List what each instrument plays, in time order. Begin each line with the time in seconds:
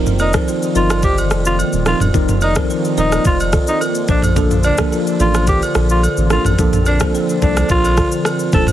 Already playing: sub bass F1, analog synth pad D#3 F3 A#3 C4 F4, tine electric piano F3 C4 D#4 A#4
0.06 mid tom, shaker
0.19 alto saxophone D#4, kalimba A#4 D5, high agogo, shaker
0.33 tine electric piano F3 C4 D#4 A#4, kalimba A4 C5, kick, cross-stick, shaker
0.48 kalimba F4 C5, shaker
0.63 shaker
0.75 sub bass G1, tine electric piano F3 C4 D#4 A#4, alto saxophone F4, kalimba C5 D#5, shaker
0.90 kalimba A#4 D5, cross-stick, high agogo, shaker
1.02 kalimba F4 C5, alto saxophone G4, kick, shaker
1.18 high agogo, shaker
1.30 sub bass F1, kalimba F4 A4, cross-stick, shaker
1.45 alto saxophone F4, shaker
1.59 high agogo, shaker
1.73 sub bass D#1, shaker
1.86 tine electric piano F3 C4 D#4 A#4, alto saxophone F4, kalimba G4 A#4, cross-stick, shaker
2.00 sub bass D#1, mid tom, high agogo, shaker
2.14 sub bass F1, tine electric piano F3 C4 D#4 A#4, kick, shaker
2.29 mid tom, shaker
2.41 alto saxophone D#4, kalimba A#4 D5, high agogo, shaker
2.55 tine electric piano F3 C4 D#4 A#4, kalimba A4 C5, kick, cross-stick, shaker
2.70 kalimba F4 C5, shaker
2.85 shaker
2.97 sub bass D#1, tine electric piano F3 C4 D#4 A#4, alto saxophone D#4, kalimba C5 D#5, shaker
3.12 kalimba A#4 D5, cross-stick, high agogo, shaker
3.25 sub bass F1, alto saxophone F4, kalimba F4 C5, kick, shaker
3.40 high agogo, shaker
3.52 kalimba F4 A4, kick, cross-stick, shaker
3.67 alto saxophone D#4, shaker
3.81 kalimba F4 A#4, high agogo, shaker
3.95 shaker
4.08 sub bass A#1, analog synth pad D3 A4, tine electric piano F3 A#3 D4 A4, alto saxophone D4, kalimba A4 C5, kick, shaker
4.22 mid tom, high agogo, shaker
4.36 tine electric piano F3 A#3 D4 A4, kick, shaker
4.51 mid tom, shaker
4.63 alto saxophone D4, kalimba A#4 D5, high agogo, shaker
4.78 tine electric piano F3 A#3 D4 A4, kalimba G4 A#4, kick, cross-stick, shaker
4.92 kalimba F4 A#4, shaker
5.07 shaker
5.20 sub bass A1, tine electric piano F3 A#3 D4 A4, alto saxophone F4, kalimba A#4 D5, shaker
5.34 kalimba A4 C5, cross-stick, high agogo, shaker
5.47 kalimba F4 A#4, alto saxophone G4, kick, shaker
5.62 high agogo, shaker
5.75 sub bass A#1, kalimba F4 A4, cross-stick, shaker
5.90 alto saxophone F4, shaker
6.03 high agogo, shaker
6.17 sub bass A1, shaker
6.30 tine electric piano F3 A#3 D4 A4, analog synth pad C4, alto saxophone F4, kalimba G4 A#4, cross-stick, shaker
6.45 sub bass A1, mid tom, high agogo, shaker
6.58 sub bass A#1, tine electric piano F3 A#3 D4 A4, kick, shaker
6.73 mid tom, shaker
6.86 alto saxophone D4, kalimba A#4 D5, high agogo, shaker
7.00 tine electric piano F3 A#3 D4 A4, kalimba A4 C5, kick, cross-stick, shaker
7.15 kalimba A4 C5, shaker
7.29 shaker
7.42 sub bass C2, tine electric piano F3 A#3 D4 A4, alto saxophone D4, kalimba A#4 D5, kick, shaker
7.57 kalimba A4 C5, cross-stick, high agogo, shaker
7.69 sub bass A#1, alto saxophone F4, kalimba F4 A#4, kick, shaker
7.84 high agogo, shaker
7.97 kalimba F4 A4, kick, cross-stick, shaker
8.12 shaker
8.25 kalimba F4 A#4, cross-stick, high agogo, shaker
8.39 shaker
8.52 sub bass D#1, tine electric piano F3 A#3 D4 A4, alto saxophone A4, kalimba A4 C5, kick, shaker
8.67 mid tom, high agogo, shaker